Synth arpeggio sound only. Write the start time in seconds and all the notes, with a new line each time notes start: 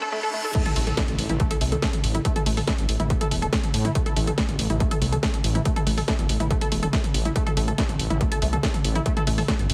0.02 A4
0.12 A3
0.23 A4
0.34 A3
0.45 A4
0.55 A3
0.66 A4
0.76 A3
0.87 A4
0.97 A3
1.30 E4
1.40 A3
1.51 A4
1.61 A3
1.72 A4
1.83 A3
2.15 E4
2.25 A3
2.36 A4
2.46 A3
2.57 A4
2.68 A3
3.00 E4
3.10 A3
3.21 A4
3.31 A3
3.42 A4
3.53 A3
3.85 E4
3.95 A3
4.06 A4
4.16 A3
4.27 A4
4.38 A3
4.70 E4
4.80 A3
4.91 A4
5.02 A3
5.12 A4
5.23 A3
5.55 E4
5.65 A3
5.76 A4
5.87 A3
5.97 A4
6.08 A3
6.40 E4
6.51 A3
6.61 A4
6.72 A3
6.83 A4
6.93 A3
7.25 E4
7.36 A3
7.46 A4
7.57 A3
7.68 A4
7.78 A3
8.10 E4
8.21 A3
8.32 A4
8.42 A3
8.53 A4
8.63 A3
8.95 E4
9.06 A3
9.17 A4
9.27 A3
9.38 A4
9.48 A3